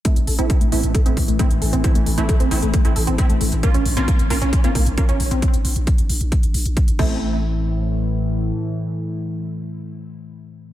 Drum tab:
CC |----------------|----------------|----------------|--------------x-|
HH |xxoxxxoxxxoxxxox|xxoxxxoxxxoxxxox|xxoxxxoxxxoxxxox|xxoxxxoxxxoxxx--|
BD |o---o---o-o-o---|o---o---o---o---|o---o---o-o-o---|o---o---o---o-o-|

CC |----------------|----------------|
HH |----------------|----------------|
BD |----------------|----------------|